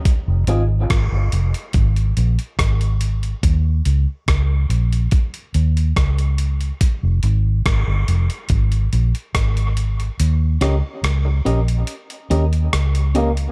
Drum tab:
HH |x-x-x-xxxxxxxxxx|x-x-x-xxxxxxxxxx|x-x-x-xxxxxxxxxx|x-x-x-xxxxxxxxxx|
SD |----r-------r---|----r-------r---|----r-------r---|--r-r-------r---|
BD |o---o---o---o---|o---o---o---o---|o---o---o---o---|----------------|